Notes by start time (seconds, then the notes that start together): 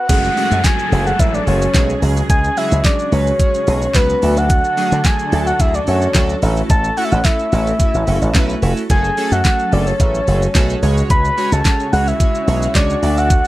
0.09 F#1 F#3 G#3 A3 C#4 F#4 G#4 A4 F#5, kick, closed hi-hat, crash, downlifter, shaker
0.24 shaker
0.37 G#3 A3 C#4 F#4 G#4, open hi-hat, shaker
0.51 F#2, shaker
0.64 G#3 A3 C#4 F#4 G#4 G#5, kick, snare, clap, closed hi-hat, shaker
0.79 shaker
0.92 F#1 G#3 A3 C#4 F#4 G#4, open hi-hat, shaker
1.06 F#5, shaker
1.19 A1 G#3 A3 C#4 F#4 B4 E5, kick, closed hi-hat, shaker
1.34 D5, shaker
1.47 F#1 G#3 A3 C#4 F#4 G#4 C#5, open hi-hat, shaker
1.62 shaker
1.74 B1 G#3 A3 C#4 F#4 G#4, kick, snare, clap, closed hi-hat, shaker
1.90 shaker
2.02 C#2 C#3 F#3 G#3 C#4 F#4 G#4, open hi-hat, shaker
2.17 shaker
2.30 C#2 G#5, kick, closed hi-hat, shaker
2.44 shaker
2.57 F#3 G#3 C#4 F#4 G#4 E5, open hi-hat, shaker
2.71 C#2, shaker
2.84 F#3 G#3 C#4 F#4 G#4 D5, kick, snare, clap, closed hi-hat, shaker
2.99 shaker
3.12 C#2 F#3 G#3 C#4 F#4 B4 C#5, open hi-hat, shaker
3.27 shaker
3.39 F#3 G#3 C#4 F#4 G#4, kick, closed hi-hat, shaker
3.54 shaker
3.67 B1 F#3 G#3 C#4 F#4 G#4, open hi-hat, shaker
3.82 shaker
3.94 C#2 F#3 G#3 C#4 F#4 B4, kick, snare, clap, closed hi-hat, shaker
4.09 shaker
4.22 D2 D3 F#3 A3 D4 F#4 A4, open hi-hat, shaker
4.37 F#5, shaker
4.50 F#5, kick, closed hi-hat, shaker
4.64 shaker
4.77 F#3 A3 D4 F#4 G#4, open hi-hat, shaker
4.92 D3, shaker
5.05 F#3 A3 D4 F#4 G#4 G#5, kick, snare, clap, closed hi-hat, shaker
5.19 shaker
5.32 D2 F#3 A3 D4 F#4 A4, open hi-hat, shaker
5.47 F#5, shaker
5.59 D2 F#3 A3 D4 F#4 G#4 E5, kick, closed hi-hat, shaker
5.74 D5, shaker
5.87 F#2 F#3 A3 D4 F#4 A4 C#5, open hi-hat, shaker
6.02 shaker
6.14 D2 F#3 A3 D4 F#4 A4, kick, snare, clap, closed hi-hat, shaker
6.29 shaker
6.42 A1 A3 C#4 E4 F#4 A4, open hi-hat, shaker
6.57 shaker
6.70 A1 A5, kick, closed hi-hat, shaker
6.84 shaker
6.97 A3 C#4 E4 F#4 A4 F#5, open hi-hat, shaker
7.04 E5
7.12 A1 F#5, shaker
7.24 A3 C#4 E4 F#4 A4 E5, kick, snare, clap, closed hi-hat, shaker
7.39 shaker
7.52 A1 A3 C#4 E4 F#4 A4 E5, open hi-hat, shaker
7.67 shaker
7.80 A3 C#4 E4 F#4 A4, kick, closed hi-hat, shaker
7.94 A1, shaker
8.07 F#1 A3 C#4 E4 F#4 A4, open hi-hat, shaker
8.22 A1, shaker
8.35 B1 A3 C#4 E4 F#4 B4, kick, snare, clap, closed hi-hat, shaker
8.49 shaker
8.62 F1 A3 C#4 E4 F#4 A4, open hi-hat, shaker
8.77 shaker
8.89 F#1 F#3 A3 C#4 F#4 G#4 A4 G#5, kick, closed hi-hat, shaker
9.04 shaker
9.17 A3 C#4 F#4 G#4 A4, open hi-hat, shaker
9.32 F#2 F#5, shaker
9.45 A3 C#4 F#4 G#4 A4, kick, snare, clap, closed hi-hat, shaker
9.59 shaker
9.72 F#1 A3 C#4 F#4 G#4 A4 D5, open hi-hat, shaker
9.87 C#5, shaker
10.00 A1 A3 C#4 F#4 G#4 A4, kick, closed hi-hat, shaker
10.15 shaker
10.27 F#1 A3 C#4 F#4 G#4 A4, open hi-hat, shaker
10.42 shaker
10.55 B1 A3 C#4 F#4 G#4 A4, kick, snare, clap, closed hi-hat, shaker
10.70 shaker
10.82 C#2 C#3 G#3 C#4 F#4 G#4 C#5, open hi-hat, shaker
10.97 shaker
11.10 C#2 B5, kick, closed hi-hat, shaker
11.25 shaker
11.37 G#3 C#4 F#4 G#4 C#5, open hi-hat, shaker
11.52 C#2 A5, shaker
11.65 G#3 C#4 F#4 G#4 C#5, kick, snare, clap, closed hi-hat, shaker
11.80 shaker
11.93 C#2 G#3 C#4 F#4 G#4 C#5 F#5, open hi-hat, shaker
12.07 E5, shaker
12.20 G#3 C#4 F#4 G#4 C#5, kick, closed hi-hat, shaker
12.35 shaker
12.47 B1 G#3 C#4 F#4 G#4 C#5, open hi-hat, shaker
12.62 shaker
12.75 C#2 G#3 C#4 F#4 G#4 C#5 D5, kick, snare, clap, closed hi-hat, shaker
12.90 shaker
13.02 D2 D3 A3 D4 F#4 A4 D5, open hi-hat, shaker
13.17 F#5, shaker
13.30 F#5, kick, closed hi-hat, shaker